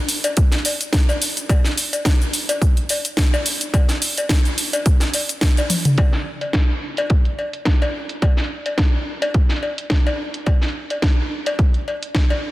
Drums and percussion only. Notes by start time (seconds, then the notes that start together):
0.09 open hi-hat, shaker
0.24 closed hi-hat, cowbell, shaker
0.37 kick, closed hi-hat, shaker
0.52 snare, closed hi-hat
0.65 open hi-hat, cowbell, shaker
0.81 closed hi-hat, shaker
0.93 kick, snare, closed hi-hat, shaker
1.09 cowbell, shaker
1.22 open hi-hat, shaker
1.37 closed hi-hat, shaker
1.49 kick, closed hi-hat, cowbell, shaker
1.64 snare, shaker
1.78 open hi-hat, shaker
1.93 closed hi-hat, cowbell, shaker
2.05 kick, snare, closed hi-hat, shaker
2.21 shaker
2.33 open hi-hat, shaker
2.49 closed hi-hat, cowbell, shaker
2.62 kick, closed hi-hat, shaker
2.77 closed hi-hat
2.89 open hi-hat, cowbell, shaker
3.05 closed hi-hat, shaker
3.17 kick, snare, closed hi-hat, shaker
3.34 cowbell, shaker
3.46 open hi-hat, shaker
3.61 closed hi-hat, shaker
3.74 kick, closed hi-hat, cowbell, shaker
3.89 snare, closed hi-hat, shaker
4.02 open hi-hat, shaker
4.17 closed hi-hat, cowbell, shaker
4.29 kick, snare, closed hi-hat, shaker
4.45 closed hi-hat, shaker
4.58 open hi-hat, shaker
4.73 closed hi-hat, cowbell, shaker
4.86 kick, closed hi-hat, shaker
5.00 snare, closed hi-hat, shaker
5.14 open hi-hat, cowbell, shaker
5.29 closed hi-hat, shaker
5.41 kick, snare, closed hi-hat, shaker
5.57 closed hi-hat, cowbell, shaker
5.70 open hi-hat, high tom, shaker
5.85 closed hi-hat, mid tom, shaker
5.98 kick, closed hi-hat, cowbell
6.13 snare
6.41 closed hi-hat, cowbell
6.53 kick, snare, closed hi-hat
6.97 closed hi-hat, cowbell
7.10 kick, closed hi-hat
7.25 closed hi-hat
7.39 cowbell
7.53 closed hi-hat
7.65 kick, snare, closed hi-hat
7.82 cowbell
8.09 closed hi-hat
8.22 kick, closed hi-hat, cowbell
8.37 snare
8.66 closed hi-hat, cowbell
8.78 kick, snare, closed hi-hat
9.22 closed hi-hat, cowbell
9.34 kick, closed hi-hat
9.49 snare, closed hi-hat
9.63 cowbell
9.78 closed hi-hat
9.90 kick, snare, closed hi-hat
10.07 cowbell
10.34 closed hi-hat
10.46 kick, closed hi-hat, cowbell
10.62 snare
10.90 closed hi-hat, cowbell
11.02 kick, snare, closed hi-hat
11.46 closed hi-hat, cowbell
11.59 kick, closed hi-hat
11.74 closed hi-hat
11.88 cowbell
12.03 closed hi-hat
12.15 kick, snare, closed hi-hat
12.30 cowbell